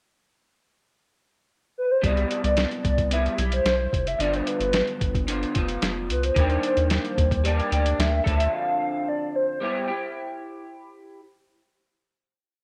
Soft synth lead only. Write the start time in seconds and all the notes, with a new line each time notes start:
1.78 B4
1.91 C5
2.05 D5
3.13 E5
3.54 C5
4.07 E5
4.21 D5
4.34 C5
4.48 B4
6.11 B4
6.24 C5
7.46 D5
7.99 E5
8.54 F5
9.08 D5
9.35 C5